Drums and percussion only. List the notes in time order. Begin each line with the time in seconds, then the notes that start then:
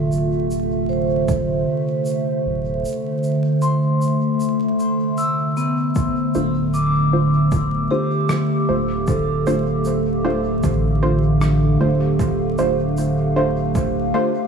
0.12 shaker
0.51 shaker
1.28 kick, shaker
2.06 shaker
2.85 shaker
3.23 shaker
3.62 shaker
4.01 shaker
4.40 shaker
4.79 shaker
5.18 shaker
5.57 shaker
5.95 kick, shaker
6.35 shaker
6.74 shaker
7.52 kick, shaker
8.29 cross-stick, shaker
9.07 kick, shaker
9.47 shaker
9.85 shaker
10.63 kick, shaker
11.41 cross-stick, shaker
12.19 kick, shaker
12.58 shaker
12.97 shaker
13.75 kick, shaker